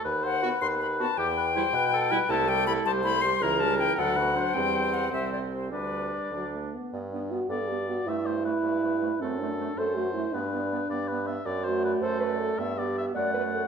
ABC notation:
X:1
M:6/8
L:1/16
Q:3/8=106
K:Em
V:1 name="Flute"
z2 f4 c'2 b2 a2 | g12 | [K:G] a2 g2 b2 a2 b2 c'2 | ^a2 =a2 g2 f6 |
g4 f2 e2 d2 c2 | B6 z6 | d2 d2 d2 d2 d2 d2 | c2 c2 c2 c2 c2 c2 |
c2 c2 c2 c2 c2 c2 | d2 d2 d2 d2 d2 d2 | z2 d6 d4 | d2 d4 d2 d4 |]
V:2 name="Oboe"
B2 c2 B8 | G2 B2 c2 B2 A2 B2 | [K:G] A6 c6 | ^A6 =A2 B2 c2- |
c8- c z3 | d8- d z3 | z6 d6 | e2 c2 B8 |
A6 c6 | B6 d2 B2 e2 | d2 c2 B2 A6 | e2 d2 e2 f6 |]
V:3 name="Clarinet"
z4 F z4 z F z | z4 E z4 z E z | [K:G] E2 G2 E2 G2 E2 G2 | E2 ^C2 E2 D2 F2 D2 |
C6 C6 | D6 D4 z2 | B,2 B,2 B,2 B,2 B,2 B,2 | A,2 A,2 A,2 A,2 A,2 A,2 |
A,2 A,2 A,2 A,2 A,2 A,2 | B,2 B,2 B,2 B,2 B,2 B,2 | z2 A,6 A,4 | B,2 B,4 A,2 A,4 |]
V:4 name="French horn"
z4 B, z4 z B, z | z4 G, z4 z G, z | [K:G] A,2 G,2 A,2 G,2 A,2 G,2 | E,2 G,2 E,2 F,2 A,2 F,2 |
G,6 G,6 | G,6 F,2 A,2 B,2 | z2 D2 F2 A2 G2 F2 | E12 |
C2 D4 A2 F2 E2 | D12 | z2 F4 c2 B2 A2 | z2 G4 d2 B2 A2 |]
V:5 name="Bassoon" clef=bass
^D,,6 D,,6 | E,,6 B,,6 | [K:G] C,,6 C,,6 | ^C,,6 D,,6 |
E,,6 C,,6 | D,,6 D,,4 z2 | G,,6 G,,6 | G,,6 G,,6 |
F,,6 F,,6 | G,,6 G,,6 | F,,6 F,,6 | G,,6 F,,6 |]